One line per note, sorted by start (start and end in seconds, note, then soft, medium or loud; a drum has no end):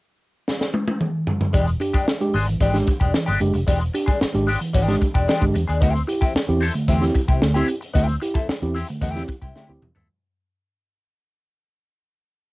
0.48 snare medium
0.61 snare medium
0.74 high tom medium
0.88 high tom medium
1.01 mid tom loud
1.27 floor tom medium
1.41 floor tom loud
1.53 1.74 E1 loud
1.53 1.68 E3 medium
1.53 1.69 G#3 medium
1.53 1.67 D4 medium
1.53 1.66 G4 medium
1.53 kick loud
1.53 closed hi-hat medium
1.67 muted clean electric guitar stroke soft
1.67 closed hi-hat soft
1.80 1.95 D4 medium
1.80 1.95 G4 medium
1.80 muted clean electric guitar stroke soft
1.80 closed hi-hat medium
1.93 2.06 G#3 soft
1.93 2.06 D4 medium
1.93 2.06 G4 medium
1.93 muted fingered electric bass stroke soft
1.93 kick medium
1.93 closed hi-hat medium
2.07 muted clean electric guitar stroke soft
2.07 snare loud
2.21 2.35 G#3 medium
2.21 2.35 D4 medium
2.21 2.35 G4 medium
2.21 closed hi-hat soft
2.34 2.55 G#1 medium
2.34 2.46 G#3 medium
2.34 2.46 D4 medium
2.34 2.47 G#4 medium
2.34 open hi-hat medium
2.47 2.60 E3 medium
2.47 muted clean electric guitar stroke soft
2.47 closed hi-hat medium
2.60 2.81 G#1 loud
2.60 2.75 E3 medium
2.60 2.76 G#3 medium
2.60 2.76 D4 medium
2.60 2.77 G4 loud
2.60 kick medium
2.60 closed hi-hat medium
2.74 2.88 G#3 medium
2.74 2.86 D4 medium
2.74 2.86 G4 medium
2.74 snare soft
2.74 closed hi-hat soft
2.87 2.93 D4 soft
2.87 2.93 G4 soft
2.87 muted clean electric guitar stroke soft
2.87 kick medium
2.87 closed hi-hat medium
3.00 3.11 E1 medium
3.00 3.13 G#3 soft
3.00 3.13 D4 medium
3.00 3.12 G4 medium
3.00 kick medium
3.00 closed hi-hat soft
3.14 3.29 E3 medium
3.14 muted clean electric guitar stroke soft
3.14 snare loud
3.26 3.38 G1 loud
3.26 3.39 G#3 medium
3.26 3.40 D4 medium
3.26 3.40 G4 medium
3.26 closed hi-hat medium
3.40 3.51 F#1 loud
3.40 3.55 G#3 medium
3.40 3.53 D4 medium
3.40 3.53 G4 medium
3.40 muted clean electric guitar stroke soft
3.40 closed hi-hat medium
3.54 3.65 F1 medium
3.54 3.60 D4 soft
3.54 3.60 G4 soft
3.54 muted clean electric guitar stroke medium
3.54 closed hi-hat soft
3.67 3.88 E1 medium
3.67 3.82 E3 medium
3.67 3.82 G#3 medium
3.67 3.80 D4 medium
3.67 3.79 G4 medium
3.67 kick loud
3.67 closed hi-hat loud
3.80 muted clean electric guitar stroke soft
3.80 closed hi-hat soft
3.94 4.09 D4 medium
3.94 4.09 G4 medium
3.94 muted clean electric guitar stroke soft
3.94 closed hi-hat medium
4.06 4.19 G#3 medium
4.06 4.19 D4 medium
4.06 4.19 G#4 medium
4.06 muted fingered electric bass stroke soft
4.06 kick medium
4.06 closed hi-hat medium
4.20 muted clean electric guitar stroke soft
4.20 muted fingered electric bass stroke medium
4.20 snare loud
4.34 4.55 G#1 medium
4.34 4.48 G#3 medium
4.34 4.49 D4 medium
4.34 4.49 G4 medium
4.34 closed hi-hat medium
4.47 4.59 G#3 medium
4.47 4.60 D4 medium
4.47 4.59 G4 medium
4.47 open hi-hat medium
4.60 4.74 E3 medium
4.60 muted clean electric guitar stroke soft
4.60 closed hi-hat medium
4.73 4.95 G#1 loud
4.73 4.89 E3 medium
4.73 4.94 G#3 medium
4.73 4.95 D4 medium
4.73 4.95 G4 medium
4.73 kick medium
4.73 closed hi-hat medium
4.88 5.02 G#3 medium
4.88 5.01 D4 medium
4.88 5.00 G4 medium
4.88 snare soft
4.88 closed hi-hat medium
5.01 5.07 D4 soft
5.01 5.07 G4 soft
5.01 muted clean electric guitar stroke soft
5.01 kick medium
5.01 closed hi-hat medium
5.14 5.25 E1 medium
5.14 5.26 G#3 soft
5.14 5.27 D4 medium
5.14 5.26 G4 medium
5.14 kick loud
5.14 closed hi-hat soft
5.28 5.43 E3 medium
5.28 5.43 G#3 medium
5.28 5.43 D4 medium
5.28 5.44 G4 medium
5.28 snare loud
5.41 5.52 G1 medium
5.41 5.56 G#3 medium
5.41 5.54 D4 medium
5.41 5.54 G4 medium
5.41 kick medium
5.41 closed hi-hat medium
5.54 5.65 E2 medium
5.54 5.60 D4 soft
5.54 5.60 G4 soft
5.54 muted clean electric guitar stroke soft
5.54 closed hi-hat medium
5.67 5.82 D#2 medium
5.67 5.80 G#3 soft
5.67 5.80 D4 medium
5.67 5.79 G#4 medium
5.67 closed hi-hat soft
5.81 6.02 D2 loud
5.81 5.96 D3 medium
5.81 5.96 A3 medium
5.81 6.01 C4 medium
5.81 5.94 E4 medium
5.81 5.93 G4 medium
5.81 kick loud
5.81 closed hi-hat loud
5.94 muted clean electric guitar stroke soft
5.94 closed hi-hat medium
6.07 6.22 E4 medium
6.07 6.22 G4 medium
6.07 muted clean electric guitar stroke soft
6.07 closed hi-hat medium
6.21 6.33 C4 medium
6.21 6.33 E4 medium
6.21 6.33 G4 medium
6.21 muted fingered electric bass stroke soft
6.21 kick medium
6.21 closed hi-hat medium
6.34 muted clean electric guitar stroke soft
6.34 muted fingered electric bass stroke soft
6.34 snare loud
6.48 6.69 E2 medium
6.48 6.62 C4 medium
6.48 6.63 E4 medium
6.48 6.63 G4 medium
6.48 closed hi-hat medium
6.61 6.73 C4 medium
6.61 6.73 E4 medium
6.61 6.74 A4 medium
6.61 open hi-hat medium
6.74 6.88 D3 medium
6.74 6.88 A3 medium
6.74 muted clean electric guitar stroke soft
6.74 closed hi-hat medium
6.88 7.08 E2 loud
6.88 7.03 D3 medium
6.88 7.03 A3 medium
6.88 7.03 C4 medium
6.88 7.03 E4 medium
6.88 7.04 G4 medium
6.88 kick medium
6.88 closed hi-hat medium
7.01 7.16 C4 medium
7.01 7.14 E4 medium
7.01 7.14 G4 medium
7.01 snare soft
7.01 closed hi-hat medium
7.15 muted clean electric guitar stroke soft
7.15 kick medium
7.15 closed hi-hat medium
7.28 7.38 C2 medium
7.28 7.40 C4 medium
7.28 7.40 E4 soft
7.28 7.40 G4 medium
7.28 kick loud
7.28 closed hi-hat soft
7.41 7.62 D2 medium
7.41 7.56 D3 medium
7.41 7.56 A3 medium
7.41 muted clean electric guitar stroke soft
7.41 snare loud
7.54 7.69 C4 medium
7.54 7.67 C4 medium
7.54 7.67 E4 medium
7.54 7.68 E4 medium
7.54 7.68 G4 medium
7.54 closed hi-hat medium
7.68 7.74 E4 soft
7.68 7.74 G4 soft
7.68 muted clean electric guitar stroke soft
7.68 closed hi-hat medium
7.81 muted clean electric guitar stroke soft
7.81 closed hi-hat soft
7.94 8.15 D2 loud
7.94 8.10 D3 medium
7.94 8.10 A3 medium
7.94 8.14 C4 medium
7.94 8.08 E4 medium
7.94 8.06 G4 medium
7.94 kick loud
7.94 closed hi-hat loud
8.08 muted clean electric guitar stroke soft
8.08 closed hi-hat soft
8.20 8.36 E4 medium
8.20 8.36 G4 medium
8.20 muted clean electric guitar stroke soft
8.20 closed hi-hat medium
8.34 8.47 C4 soft
8.34 8.47 E4 medium
8.34 8.46 A4 medium
8.34 muted fingered electric bass stroke soft
8.34 kick medium
8.34 closed hi-hat medium
8.48 muted clean electric guitar stroke soft
8.48 muted fingered electric bass stroke soft
8.48 snare loud
8.62 8.82 E2 medium
8.62 8.76 C4 medium
8.62 8.76 E4 medium
8.62 8.77 G4 medium
8.62 closed hi-hat medium
8.75 8.86 C4 medium
8.75 8.87 E4 medium
8.75 8.87 G4 medium
8.75 open hi-hat medium
8.89 9.01 D3 medium
8.89 9.01 A3 medium
8.89 muted clean electric guitar stroke soft
8.89 closed hi-hat medium
9.01 9.22 E2 loud
9.01 9.16 D3 medium
9.01 9.16 A3 medium
9.01 9.22 C4 medium
9.01 9.22 E4 medium
9.01 9.22 G4 loud
9.01 kick medium
9.01 closed hi-hat medium
9.15 9.30 C4 medium
9.15 9.28 E4 medium
9.15 9.28 G4 medium
9.15 snare soft
9.15 closed hi-hat soft
9.28 9.34 E4 soft
9.28 9.34 G4 soft
9.28 muted clean electric guitar stroke soft
9.28 kick medium
9.28 closed hi-hat medium
9.42 9.52 C2 medium
9.42 9.54 C4 medium
9.42 9.54 E4 soft
9.42 9.53 G4 medium
9.42 kick loud
9.42 closed hi-hat medium
9.55 9.70 D3 medium
9.55 9.70 A3 medium
9.55 9.70 C4 medium
9.55 9.71 E4 medium
9.55 9.71 G4 medium
9.55 snare medium
9.69 9.79 D2 medium
9.69 9.83 C4 medium
9.69 9.82 E4 medium
9.69 9.82 G4 medium
9.82 9.92 E2 loud
9.82 9.88 E4 soft
9.82 9.88 G4 soft
9.82 muted clean electric guitar stroke soft
9.82 mid tom medium
9.95 10.06 D#2 medium
9.95 10.08 C4 medium
9.95 10.07 E4 medium
9.95 10.07 A4 medium
9.95 floor tom loud